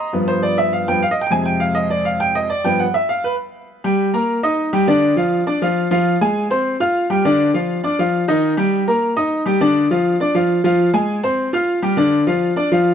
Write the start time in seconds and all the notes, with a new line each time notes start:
Already playing: D#5 A#5 C6 D#6
0.13 G2 F3 B3
0.28 C5
0.43 D5
0.58 E5
0.73 F5
0.88 G2 F3 B3 G5
1.02 F5
1.11 D#5
1.21 G5
1.27 F2 G5
1.31 C3 G#3 G#5
1.45 G5
1.60 F5
1.75 D#5
1.90 D5
2.05 F5
2.20 G5
2.35 D#5
2.50 D5
2.64 G2 F3 B3 G5
2.80 F#5
2.94 E5
3.09 F5
3.24 B4
3.84 G3 G4 G5
4.14 A#3 A#4 A#5
4.43 D#4 D#5 D#6
4.73 G3 G4 G5
4.88 D3 D4 D5
5.16 F3 F4 F5
5.47 D4 D5 D6
5.62 F3 F4 F5
5.91 F3 F4 F5
6.21 G#3 G#4 G#5
6.50 C4 C5 C6
6.80 F4 F5 F6
7.10 G3 G4 G5
7.25 D3 D4 D5
7.54 F3 F4 F5
7.84 D4 D5 D6
7.99 F3 F4 F5
8.28 D#3 D#4 D#5
8.57 G3 G4 G5
8.88 A#3 A#4 A#5
9.16 D#4 D#5 D#6
9.46 G3 G4 G5
9.61 D3 D4 D5
9.91 F3 F4 F5
10.20 D4 D5 D6
10.35 F3 F4 F5
10.64 F3 F4 F5
10.94 G#3 G#4 G#5
11.23 C4 C5 C6
11.53 F4 F5 F6
11.82 G3 G4 G5
11.97 D3 D4 D5
12.27 F3 F4 F5
12.56 D4 D5 D6
12.72 F3 F4 F5